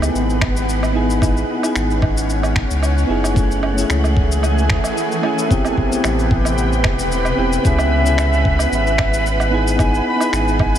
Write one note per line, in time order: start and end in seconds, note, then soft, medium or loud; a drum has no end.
0.00 0.93 B3 medium
0.00 1.19 B3 medium
0.00 0.94 D#4 medium
0.00 0.95 E4 medium
0.00 0.96 G#4 medium
0.00 10.79 F#5 medium
0.00 cabasa medium
0.00 low woodblock medium
0.15 1.44 G#1 medium
0.15 cabasa soft
0.30 cabasa soft
0.41 finger snap medium
0.41 kick loud
0.41 low woodblock medium
0.57 cabasa medium
0.69 cabasa medium
0.83 cabasa soft
0.83 low woodblock medium
0.93 1.18 B3 medium
0.93 1.18 D#4 medium
0.93 1.19 E4 medium
0.93 1.20 G#4 medium
1.10 cabasa medium
1.20 1.58 B3 medium
1.20 3.34 C#4 medium
1.20 1.59 D#4 medium
1.20 1.60 E4 medium
1.20 1.60 G#4 medium
1.20 kick loud
1.20 cabasa medium
1.20 low woodblock medium
1.37 cabasa soft
1.59 3.04 B3 medium
1.59 3.06 D#4 medium
1.63 3.07 E4 medium
1.63 3.08 G#4 medium
1.63 cabasa medium
1.63 low woodblock medium
1.76 2.65 G#1 medium
1.76 finger snap medium
1.76 cabasa medium
1.91 cabasa soft
2.02 kick loud
2.02 low woodblock medium
2.17 cabasa medium
2.30 cabasa soft
2.43 cabasa soft
2.43 low woodblock medium
2.56 finger snap medium
2.56 kick loud
2.71 3.05 C#2 loud
2.71 cabasa medium
2.83 cabasa medium
2.83 low woodblock medium
2.98 cabasa soft
3.07 3.85 F#1 medium
3.07 3.32 B3 medium
3.07 3.33 D#4 medium
3.07 3.33 E4 medium
3.07 3.34 G#4 medium
3.24 cabasa medium
3.24 low woodblock medium
3.34 5.48 E3 medium
3.34 3.72 A3 medium
3.34 5.48 A3 medium
3.34 3.73 C#4 medium
3.34 3.74 E4 medium
3.34 5.48 G#4 medium
3.34 kick loud
3.34 cabasa medium
3.38 3.75 G#4 medium
3.51 cabasa soft
3.63 low woodblock medium
3.73 5.19 A3 medium
3.73 5.20 C#4 medium
3.78 5.21 E4 medium
3.78 5.23 G#4 medium
3.78 cabasa medium
3.90 4.79 C#2 medium
3.90 finger snap medium
3.90 cabasa medium
4.04 cabasa soft
4.04 low woodblock medium
4.17 kick loud
4.32 cabasa medium
4.43 cabasa medium
4.43 low woodblock medium
4.58 cabasa soft
4.70 finger snap medium
4.70 kick loud
4.84 cabasa medium
4.84 low woodblock medium
4.97 cabasa medium
5.12 cabasa soft
5.22 5.47 A3 medium
5.22 5.47 C#4 medium
5.22 5.48 E4 medium
5.22 5.49 G#4 medium
5.22 low woodblock medium
5.39 cabasa medium
5.48 7.63 C3 medium
5.48 5.86 B3 medium
5.48 5.88 C4 medium
5.48 5.88 E4 medium
5.48 7.63 G4 medium
5.48 5.89 G4 medium
5.48 10.79 B4 medium
5.48 kick loud
5.48 cabasa medium
5.65 cabasa soft
5.65 low woodblock medium
5.77 kick medium
5.87 7.33 B3 medium
5.87 7.34 C4 medium
5.92 7.35 E4 medium
5.92 7.37 G4 medium
5.92 cabasa medium
6.04 6.86 A1 medium
6.04 finger snap medium
6.04 cabasa medium
6.04 low woodblock medium
6.19 cabasa soft
6.31 kick loud
6.45 cabasa medium
6.45 low woodblock medium
6.58 cabasa medium
6.73 cabasa soft
6.84 7.33 E1 medium
6.84 finger snap medium
6.84 kick loud
6.84 low woodblock medium
6.99 cabasa medium
7.12 cabasa medium
7.25 cabasa soft
7.25 low woodblock medium
7.36 7.59 E1 medium
7.36 7.61 B3 medium
7.36 7.61 C4 medium
7.36 7.62 E4 medium
7.40 7.63 G4 medium
7.53 cabasa medium
7.63 8.67 C#2 medium
7.63 8.00 B3 medium
7.63 8.02 C#4 medium
7.63 8.03 E4 medium
7.63 8.03 G#4 medium
7.63 8.68 E5 loud
7.63 kick loud
7.63 cabasa medium
7.79 cabasa soft
7.79 low woodblock medium
8.02 9.47 B3 medium
8.02 9.48 C#4 medium
8.06 9.50 E4 medium
8.06 9.51 G#4 medium
8.06 cabasa medium
8.18 finger snap medium
8.18 cabasa soft
8.18 low woodblock medium
8.33 cabasa soft
8.45 kick medium
8.59 cabasa medium
8.59 low woodblock medium
8.72 10.01 G#1 medium
8.72 9.49 E5 loud
8.72 cabasa medium
8.87 cabasa soft
8.98 finger snap medium
8.98 kick loud
8.98 low woodblock medium
9.14 cabasa medium
9.26 cabasa medium
9.40 cabasa soft
9.40 low woodblock medium
9.50 9.75 B3 medium
9.50 9.76 D#4 medium
9.50 9.76 E4 medium
9.50 9.77 G#4 medium
9.67 cabasa medium
9.77 10.15 B3 medium
9.77 10.16 D#4 medium
9.77 10.17 E4 medium
9.77 10.18 G#4 medium
9.77 10.05 G#5 medium
9.77 kick loud
9.77 cabasa soft
9.77 low woodblock medium
9.95 cabasa soft
10.07 10.32 B5 loud
10.16 10.79 B3 medium
10.16 10.79 D#4 medium
10.20 10.79 E4 medium
10.20 10.79 G#4 medium
10.20 cabasa medium
10.20 low woodblock medium
10.33 10.79 G#1 medium
10.33 10.58 G#5 medium
10.33 finger snap medium
10.33 cabasa medium
10.48 cabasa soft
10.59 10.79 G#5 medium
10.59 kick loud
10.59 low woodblock medium
10.75 cabasa medium